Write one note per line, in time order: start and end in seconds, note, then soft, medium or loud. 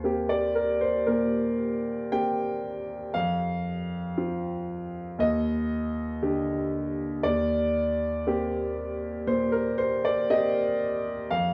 0.00 3.16 D#2 medium
0.00 1.02 A#3 soft
0.00 0.24 C5 medium
0.05 1.02 C4 soft
0.05 1.03 G4 soft
0.29 0.53 D5 medium
0.55 0.78 A#4 medium
0.81 1.04 C5 medium
1.06 2.74 A#2 soft
1.06 2.07 A#4 medium
2.12 3.11 A#3 soft
2.12 3.11 C4 soft
2.12 3.11 G4 soft
2.12 3.11 G5 medium
3.14 4.14 F2 medium
3.14 5.15 F5 medium
4.17 5.16 C4 soft
4.17 5.16 F4 medium
5.19 6.18 D#2 medium
5.19 7.20 D#5 medium
6.22 7.20 D3 soft
6.22 7.20 G4 soft
7.23 8.23 D#2 medium
7.23 9.23 D5 medium
8.27 9.23 A#3 medium
8.27 9.24 C4 medium
8.27 9.24 G4 medium
9.27 10.90 A#2 medium
9.27 9.51 C5 medium
9.52 9.76 A#4 medium
9.78 10.02 C5 medium
10.05 10.28 D5 medium
10.30 11.27 A#3 medium
10.30 11.27 C4 soft
10.30 11.28 G4 medium
10.30 10.77 D#5 medium
11.30 11.54 F2 medium
11.30 11.54 F5 medium